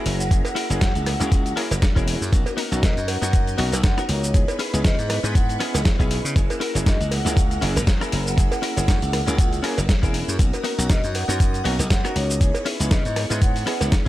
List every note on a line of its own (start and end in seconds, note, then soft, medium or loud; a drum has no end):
0.00 0.28 A#3 loud
0.00 0.25 C#4 medium
0.00 0.28 C#4 medium
0.00 0.25 E4 medium
0.00 0.28 E4 medium
0.00 0.25 F#4 medium
0.00 2.28 F#4 medium
0.00 0.28 G#4 loud
0.00 0.26 A#4 loud
0.00 2.28 E5 medium
0.00 2.29 A#5 medium
0.06 0.40 F#1 medium
0.06 open hi-hat loud
0.20 0.34 F#5 medium
0.20 cabasa medium
0.31 0.67 A#3 medium
0.31 0.67 C#4 medium
0.31 0.67 E4 medium
0.31 0.67 G#4 loud
0.31 kick loud
0.31 closed hi-hat loud
0.31 cabasa medium
0.45 0.79 F#5 medium
0.45 closed hi-hat soft
0.45 cowbell medium
0.45 cabasa soft
0.55 0.88 C#4 loud
0.55 0.88 E4 loud
0.55 0.88 F#4 loud
0.55 0.89 A#4 loud
0.55 open hi-hat loud
0.70 0.79 F#1 medium
0.70 1.17 A#3 medium
0.70 1.17 C#4 medium
0.70 1.17 E4 medium
0.70 1.17 G#4 loud
0.70 closed hi-hat soft
0.70 cabasa medium
0.81 1.53 F#5 medium
0.81 kick loud
0.81 snare loud
0.81 closed hi-hat loud
0.81 cabasa medium
0.95 1.14 C#2 medium
0.95 closed hi-hat soft
0.95 cabasa soft
1.06 cross-stick medium
1.06 open hi-hat loud
1.06 cowbell medium
1.20 1.53 C#2 loud
1.20 1.54 A#3 medium
1.20 1.31 C#4 medium
1.20 1.54 C#4 medium
1.20 1.32 E4 medium
1.20 1.54 E4 medium
1.20 1.32 F#4 medium
1.20 1.54 G#4 loud
1.20 1.32 A#4 loud
1.20 closed hi-hat soft
1.20 cabasa medium
1.32 kick loud
1.32 closed hi-hat medium
1.32 cabasa medium
1.45 muted clean electric guitar stroke soft
1.45 closed hi-hat soft
1.45 cabasa soft
1.56 1.72 A#3 medium
1.56 1.76 C#4 loud
1.56 1.72 C#4 medium
1.56 1.76 E4 loud
1.56 1.72 E4 medium
1.56 1.77 F#4 loud
1.56 1.73 G#4 loud
1.56 1.77 A#4 loud
1.56 cross-stick medium
1.56 open hi-hat loud
1.71 1.80 F#1 medium
1.71 closed hi-hat soft
1.71 cowbell medium
1.71 cabasa medium
1.82 kick loud
1.82 snare loud
1.82 closed hi-hat medium
1.82 cabasa medium
1.95 2.15 E1 medium
1.95 2.30 A#3 loud
1.95 2.27 C#4 medium
1.95 2.30 C#4 medium
1.95 2.27 E4 medium
1.95 2.30 E4 medium
1.95 2.27 F#4 medium
1.95 2.30 G#4 loud
1.95 2.27 A#4 loud
1.95 kick medium
1.95 closed hi-hat soft
1.95 cabasa soft
2.08 open hi-hat loud
2.21 2.30 F#2 medium
2.21 cabasa medium
2.32 2.44 B1 loud
2.32 2.68 A#3 medium
2.32 2.68 C#4 medium
2.32 2.69 D#4 medium
2.32 2.69 F#4 loud
2.32 4.32 A#4 medium
2.32 4.32 D#5 medium
2.32 kick loud
2.32 closed hi-hat medium
2.32 cabasa medium
2.46 2.61 A#4 medium
2.46 closed hi-hat soft
2.46 cowbell medium
2.46 cabasa soft
2.57 2.90 B3 loud
2.57 2.90 D#4 loud
2.57 2.90 F#4 loud
2.57 2.90 A#4 loud
2.57 open hi-hat loud
2.71 2.80 B1 medium
2.71 3.19 C#4 medium
2.71 3.19 D#4 medium
2.71 3.19 F#4 loud
2.71 3.19 A#4 medium
2.71 closed hi-hat soft
2.71 cabasa medium
2.83 3.00 D#5 medium
2.83 kick loud
2.83 snare loud
2.83 closed hi-hat medium
2.83 cabasa medium
2.97 3.16 F#2 medium
2.97 closed hi-hat soft
2.97 cabasa soft
3.08 3.59 F#5 medium
3.08 open hi-hat loud
3.08 cowbell medium
3.22 3.55 F#2 loud
3.22 3.33 B3 medium
3.22 3.56 C#4 medium
3.22 3.33 D#4 medium
3.22 3.56 D#4 medium
3.22 3.34 F#4 medium
3.22 3.56 F#4 loud
3.22 3.56 A#4 medium
3.22 3.34 A#4 loud
3.22 closed hi-hat soft
3.22 cabasa medium
3.33 kick loud
3.33 closed hi-hat medium
3.33 cabasa medium
3.47 muted clean electric guitar stroke soft
3.47 closed hi-hat soft
3.47 cabasa soft
3.58 3.69 B1 medium
3.58 3.74 A#3 loud
3.58 3.78 B3 loud
3.58 3.74 C#4 medium
3.58 3.78 D#4 loud
3.58 3.74 D#4 medium
3.58 3.74 F#4 loud
3.58 3.78 F#4 loud
3.58 3.79 A#4 loud
3.58 open hi-hat loud
3.72 3.81 B1 medium
3.72 closed hi-hat soft
3.72 cowbell medium
3.72 cabasa medium
3.84 3.95 F#2 loud
3.84 4.00 F#5 medium
3.84 kick loud
3.84 snare loud
3.84 closed hi-hat medium
3.84 cabasa medium
3.97 4.28 B3 medium
3.97 4.32 C#4 medium
3.97 4.28 D#4 medium
3.97 4.32 D#4 medium
3.97 4.29 F#4 medium
3.97 4.32 F#4 loud
3.97 4.31 A#4 loud
3.97 4.29 A#4 loud
3.97 cross-stick medium
3.97 closed hi-hat soft
3.97 cabasa soft
4.09 4.43 C#2 medium
4.09 4.32 C#5 medium
4.09 open hi-hat loud
4.24 cabasa medium
4.34 4.70 B3 medium
4.34 4.70 D#4 medium
4.34 4.70 E4 medium
4.34 4.71 G#4 loud
4.34 6.34 B4 medium
4.34 4.51 C#5 medium
4.34 6.34 B5 medium
4.34 6.34 C#6 medium
4.34 kick loud
4.34 closed hi-hat medium
4.34 cabasa medium
4.48 closed hi-hat soft
4.48 cowbell medium
4.48 cabasa soft
4.59 4.91 C#4 loud
4.59 4.92 E4 loud
4.59 4.92 G#4 loud
4.59 4.92 B4 loud
4.59 open hi-hat loud
4.73 4.82 C#2 medium
4.73 5.20 B3 medium
4.73 5.21 E4 medium
4.73 5.21 G#4 medium
4.73 5.21 D#5 medium
4.73 closed hi-hat soft
4.73 cabasa medium
4.84 4.96 C#3 medium
4.84 4.94 D#5 medium
4.84 kick loud
4.84 snare loud
4.84 closed hi-hat medium
4.84 cabasa medium
4.98 5.18 G#2 medium
4.98 5.06 D#5 medium
4.98 closed hi-hat soft
4.98 cabasa soft
5.10 cross-stick medium
5.10 open hi-hat loud
5.10 cowbell medium
5.23 5.56 G#2 loud
5.23 5.58 B3 medium
5.23 5.35 C#4 medium
5.23 5.35 E4 medium
5.23 5.58 E4 medium
5.23 5.35 G#4 medium
5.23 5.58 G#4 medium
5.23 5.36 B4 loud
5.23 5.58 D#5 medium
5.23 closed hi-hat soft
5.23 cabasa medium
5.35 5.74 F#5 medium
5.35 kick loud
5.35 closed hi-hat medium
5.35 cabasa medium
5.48 muted clean electric guitar stroke soft
5.48 closed hi-hat soft
5.48 cabasa soft
5.60 5.96 B3 medium
5.60 5.80 C#4 loud
5.60 5.80 E4 loud
5.60 5.96 E4 medium
5.60 5.80 G#4 loud
5.60 5.97 G#4 loud
5.60 5.80 B4 loud
5.60 5.96 D#5 medium
5.60 cross-stick medium
5.60 open hi-hat loud
5.74 5.83 C#2 medium
5.74 snare soft
5.74 closed hi-hat soft
5.74 cowbell medium
5.74 cabasa medium
5.85 kick loud
5.85 snare loud
5.85 closed hi-hat medium
5.85 cabasa medium
5.99 6.18 B1 medium
5.99 6.33 B3 medium
5.99 6.30 C#4 medium
5.99 6.30 E4 medium
5.99 6.33 E4 medium
5.99 6.31 G#4 medium
5.99 6.34 G#4 medium
5.99 6.31 B4 loud
5.99 6.33 D#5 medium
5.99 kick medium
5.99 closed hi-hat soft
5.99 cabasa soft
6.11 open hi-hat loud
6.25 6.33 C#3 medium
6.25 cabasa medium
6.35 6.47 F#1 loud
6.35 6.72 A#3 medium
6.35 6.72 C#4 medium
6.35 6.72 E4 medium
6.35 6.72 G#4 loud
6.35 10.35 A#4 medium
6.35 10.35 F#5 medium
6.35 10.35 E6 medium
6.35 kick loud
6.35 closed hi-hat medium
6.35 cabasa medium
6.50 6.64 A#4 medium
6.50 closed hi-hat soft
6.50 cowbell loud
6.50 cabasa soft
6.60 6.93 C#4 loud
6.60 6.93 E4 loud
6.60 6.93 F#4 loud
6.60 6.94 A#4 loud
6.60 open hi-hat loud
6.75 6.84 F#1 medium
6.75 7.22 A#3 medium
6.75 7.22 C#4 medium
6.75 7.22 E4 medium
6.75 7.23 G#4 loud
6.75 closed hi-hat soft
6.75 cabasa medium
6.86 6.97 F#2 medium
6.86 7.03 D#5 medium
6.86 kick loud
6.86 snare loud
6.86 closed hi-hat medium
6.86 cabasa medium
7.00 7.19 C#2 medium
7.00 closed hi-hat soft
7.00 cabasa soft
7.11 7.62 F#5 medium
7.11 open hi-hat loud
7.11 cowbell medium
7.25 7.58 C#2 loud
7.25 7.59 A#3 medium
7.25 7.36 C#4 medium
7.25 7.59 C#4 medium
7.25 7.37 E4 medium
7.25 7.59 E4 medium
7.25 7.37 F#4 medium
7.25 7.59 G#4 loud
7.25 7.37 A#4 loud
7.25 closed hi-hat soft
7.25 cabasa medium
7.37 kick loud
7.37 closed hi-hat medium
7.37 cabasa medium
7.50 muted clean electric guitar stroke soft
7.50 closed hi-hat soft
7.50 cabasa soft
7.61 7.73 F#1 medium
7.61 7.77 A#3 loud
7.61 7.81 C#4 loud
7.61 7.77 C#4 medium
7.61 7.82 E4 loud
7.61 7.77 E4 medium
7.61 7.82 F#4 loud
7.61 7.78 G#4 loud
7.61 7.82 A#4 loud
7.61 open hi-hat loud
7.76 7.85 F#1 medium
7.76 closed hi-hat soft
7.76 cowbell medium
7.76 cabasa medium
7.87 7.98 E2 loud
7.87 kick loud
7.87 snare loud
7.87 closed hi-hat medium
7.87 cabasa medium
8.00 8.35 A#3 loud
8.00 8.32 C#4 medium
8.00 8.35 C#4 medium
8.00 8.32 E4 medium
8.00 8.35 E4 medium
8.00 8.32 F#4 medium
8.00 8.35 G#4 loud
8.00 8.33 A#4 loud
8.00 cross-stick medium
8.00 closed hi-hat soft
8.00 cabasa soft
8.12 8.47 F#1 medium
8.12 open hi-hat loud
8.27 8.41 F#5 medium
8.27 cabasa medium
8.37 8.73 A#3 medium
8.37 8.73 C#4 medium
8.37 8.73 E4 medium
8.37 8.73 G#4 loud
8.37 kick loud
8.37 closed hi-hat medium
8.37 cabasa medium
8.52 8.86 F#5 medium
8.52 closed hi-hat soft
8.52 cowbell medium
8.52 cabasa soft
8.62 8.95 C#4 loud
8.62 8.95 E4 loud
8.62 8.95 F#4 loud
8.62 8.96 A#4 loud
8.62 open hi-hat loud
8.76 8.86 F#1 medium
8.76 9.24 A#3 medium
8.76 9.24 C#4 medium
8.76 9.24 E4 medium
8.76 9.24 G#4 loud
8.76 closed hi-hat soft
8.76 cabasa medium
8.88 8.99 F#2 medium
8.88 kick loud
8.88 snare loud
8.88 closed hi-hat loud
8.88 cabasa medium
9.02 9.21 C#2 medium
9.02 closed hi-hat soft
9.02 cabasa soft
9.13 cross-stick medium
9.13 open hi-hat loud
9.13 cowbell medium
9.26 9.60 C#2 loud
9.26 9.61 A#3 medium
9.26 9.38 C#4 medium
9.26 9.61 C#4 medium
9.26 9.38 E4 medium
9.26 9.61 E4 medium
9.26 9.39 F#4 medium
9.26 9.61 G#4 loud
9.26 9.39 A#4 loud
9.26 closed hi-hat soft
9.26 cabasa medium
9.38 kick loud
9.38 closed hi-hat medium
9.38 cabasa medium
9.52 muted clean electric guitar stroke soft
9.52 closed hi-hat soft
9.52 cabasa soft
9.63 9.79 A#3 loud
9.63 9.83 C#4 loud
9.63 9.79 C#4 medium
9.63 9.83 E4 loud
9.63 9.79 E4 medium
9.63 9.83 F#4 loud
9.63 9.79 G#4 loud
9.63 9.84 A#4 loud
9.63 cross-stick medium
9.63 open hi-hat loud
9.78 9.86 F#1 medium
9.78 closed hi-hat soft
9.78 cowbell medium
9.78 cabasa medium
9.89 kick loud
9.89 snare loud
9.89 closed hi-hat medium
9.89 cabasa medium
10.02 10.22 E1 medium
10.02 10.36 A#3 loud
10.02 10.33 C#4 medium
10.02 10.37 C#4 medium
10.02 10.34 E4 medium
10.02 10.37 E4 medium
10.02 10.34 F#4 medium
10.02 10.37 G#4 loud
10.02 10.34 A#4 loud
10.02 kick medium
10.02 closed hi-hat soft
10.02 cabasa soft
10.14 open hi-hat loud
10.28 10.37 F#2 medium
10.28 cabasa medium
10.39 10.50 B1 loud
10.39 10.75 A#3 medium
10.39 10.75 C#4 medium
10.39 10.75 D#4 medium
10.39 10.75 F#4 loud
10.39 12.39 A#5 medium
10.39 12.39 D#6 medium
10.39 kick loud
10.39 closed hi-hat loud
10.39 cabasa medium
10.53 10.68 A#4 medium
10.53 closed hi-hat soft
10.53 cowbell medium
10.53 cabasa soft
10.64 10.96 B3 loud
10.64 10.97 D#4 loud
10.64 10.97 F#4 loud
10.64 10.97 A#4 loud
10.64 open hi-hat loud
10.78 10.87 B1 medium
10.78 11.26 C#4 medium
10.78 11.26 D#4 medium
10.78 11.26 F#4 loud
10.78 11.25 A#4 medium
10.78 closed hi-hat soft
10.78 cabasa medium
10.89 11.06 D#5 medium
10.89 kick loud
10.89 snare loud
10.89 closed hi-hat loud
10.89 cabasa medium
11.04 11.23 F#2 medium
11.04 closed hi-hat soft
11.04 cabasa soft
11.15 11.65 F#5 medium
11.15 open hi-hat loud
11.15 cowbell medium
11.28 11.61 F#2 loud
11.28 11.40 B3 medium
11.28 11.63 C#4 medium
11.28 11.40 D#4 medium
11.28 11.63 D#4 medium
11.28 11.40 F#4 medium
11.28 11.63 F#4 loud
11.28 11.62 A#4 medium
11.28 11.41 A#4 loud
11.28 closed hi-hat soft
11.28 cabasa medium
11.40 kick loud
11.40 closed hi-hat medium
11.40 cabasa medium
11.53 muted clean electric guitar stroke soft
11.53 closed hi-hat soft
11.53 cabasa soft
11.64 11.76 B1 medium
11.64 11.80 A#3 loud
11.64 11.84 B3 loud
11.64 11.81 C#4 medium
11.64 11.85 D#4 loud
11.64 11.81 D#4 medium
11.64 11.85 F#4 loud
11.64 11.81 F#4 loud
11.64 11.85 A#4 loud
11.64 open hi-hat loud
11.79 11.88 B1 loud
11.79 closed hi-hat soft
11.79 cowbell medium
11.79 cabasa medium
11.90 12.01 F#2 loud
11.90 12.07 F#5 medium
11.90 kick loud
11.90 snare loud
11.90 closed hi-hat loud
11.90 cabasa medium
12.03 12.35 B3 medium
12.03 12.38 C#4 medium
12.03 12.35 D#4 medium
12.03 12.38 D#4 medium
12.03 12.35 F#4 medium
12.03 12.38 F#4 loud
12.03 12.38 A#4 loud
12.03 12.36 A#4 loud
12.03 cross-stick medium
12.03 closed hi-hat soft
12.03 cabasa soft
12.16 12.50 C#2 medium
12.16 12.39 C#5 medium
12.16 open hi-hat loud
12.30 cabasa medium
12.40 12.77 B3 medium
12.40 12.77 D#4 medium
12.40 12.77 E4 medium
12.40 12.77 G#4 loud
12.40 12.57 C#5 medium
12.40 14.08 C#5 medium
12.40 14.08 B5 medium
12.40 14.08 C#6 medium
12.40 kick loud
12.40 closed hi-hat loud
12.40 cabasa medium
12.54 closed hi-hat soft
12.54 cowbell medium
12.54 cabasa soft
12.65 12.98 C#4 loud
12.65 12.98 E4 loud
12.65 12.99 G#4 loud
12.65 12.99 B4 loud
12.65 open hi-hat loud
12.80 12.89 C#2 medium
12.80 13.27 B3 medium
12.80 13.27 E4 medium
12.80 13.27 G#4 loud
12.80 13.27 D#5 medium
12.80 closed hi-hat soft
12.80 cabasa medium
12.91 13.02 C#3 medium
12.91 13.00 D#5 medium
12.91 kick loud
12.91 snare loud
12.91 closed hi-hat loud
12.91 cabasa medium
13.05 13.24 G#2 medium
13.05 13.12 D#5 medium
13.05 closed hi-hat soft
13.05 cabasa soft
13.16 cross-stick medium
13.16 open hi-hat loud
13.16 cowbell medium
13.30 13.63 G#2 loud
13.30 13.64 B3 medium
13.30 13.41 C#4 medium
13.30 13.42 E4 medium
13.30 13.64 E4 medium
13.30 13.64 G#4 loud
13.30 13.42 G#4 medium
13.30 13.42 B4 loud
13.30 13.64 D#5 medium
13.30 closed hi-hat soft
13.30 cabasa medium
13.42 13.81 F#5 medium
13.42 kick loud
13.42 closed hi-hat medium
13.42 cabasa medium
13.55 muted clean electric guitar stroke soft
13.55 open hi-hat medium
13.55 cabasa soft
13.66 14.03 B3 medium
13.66 13.86 C#4 loud
13.66 13.86 E4 loud
13.66 14.03 E4 medium
13.66 13.87 G#4 loud
13.66 14.03 G#4 loud
13.66 13.87 B4 loud
13.66 14.03 D#5 medium
13.66 cross-stick medium
13.66 open hi-hat loud
13.81 13.90 C#2 medium
13.81 snare soft
13.81 closed hi-hat soft
13.81 cowbell medium
13.81 cabasa medium
13.92 kick loud
13.92 snare loud
13.92 closed hi-hat medium
13.92 cabasa medium